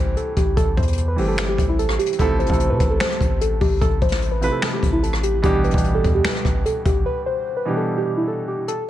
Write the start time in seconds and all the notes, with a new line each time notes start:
Already playing: A1 E3 G3 A3 C4 G4 C5
0.17 A4, closed hi-hat
0.37 A1 G4, kick, closed hi-hat
0.57 A1 A4, kick, closed hi-hat
0.77 E2 C5, kick, closed hi-hat
0.82 closed hi-hat
0.88 closed hi-hat
0.93 closed hi-hat
0.97 closed hi-hat
1.08 B4
1.16 G1 E3 G3 A3 C4 G4, open hi-hat
1.28 A4
1.38 finger snap, snare, hi-hat pedal
1.49 G4
1.58 A1, kick, closed hi-hat
1.69 E4
1.79 A4, closed hi-hat
1.89 cross-stick
1.99 G4, closed hi-hat
2.06 closed hi-hat
2.13 closed hi-hat
2.19 A1 C3 F3 A3 E4 A4, kick, closed hi-hat
2.39 C5, closed hi-hat
2.46 A1 C3 F3 A3, kick, closed hi-hat
2.51 E4 A4, closed hi-hat
2.60 closed hi-hat
2.70 C3 B4
2.80 A1, kick, closed hi-hat
2.90 A4
3.00 C5, finger snap, snare
3.11 cross-stick
3.21 A1, kick, closed hi-hat
3.41 A4, closed hi-hat
3.61 A1 G4, kick, open hi-hat
3.81 A1 A4, kick, closed hi-hat
4.02 A1 C5, kick, closed hi-hat
4.09 snare, closed hi-hat
4.15 closed hi-hat
4.22 closed hi-hat
4.31 B4
4.41 C3 F3 A3 E4 B4, closed hi-hat
4.52 A4
4.62 finger snap, snare
4.73 G4
4.83 A1, kick, closed hi-hat
4.93 E4
5.03 A4, closed hi-hat
5.13 cross-stick
5.23 G4, closed hi-hat
5.42 A1 B2 E3 G3 D4 G4, kick, closed hi-hat
5.64 B4, closed hi-hat
5.71 A1 B2 E3 G3 D4, kick, closed hi-hat
5.75 G4, closed hi-hat
5.84 closed hi-hat
5.95 A4
6.04 E2, kick, closed hi-hat
6.15 G4
6.25 B4, finger snap, snare
6.35 cross-stick
6.45 A1, kick, cross-stick, closed hi-hat
6.65 A4, closed hi-hat
6.85 A1 G4, kick, closed hi-hat
7.06 B4
7.26 C5
7.57 B4
7.65 B2 E3 G3 D4 G4
7.77 A4
7.97 G4
8.17 E4
8.28 A4
8.48 G4
8.68 A4, closed hi-hat